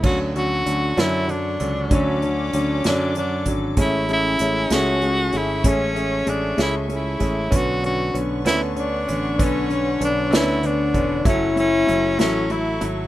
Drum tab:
CC |x-----|------|------|------|
HH |-xxxxx|xxxxxx|xxxxxx|xxxxxx|
SD |---o--|---o--|---o--|---o--|
BD |o-----|o----o|o-----|o----o|

CC |------|------|------|
HH |xxxxxx|xxxxxx|xxxxxx|
SD |---o--|---o--|---o--|
BD |o-----|o----o|o-----|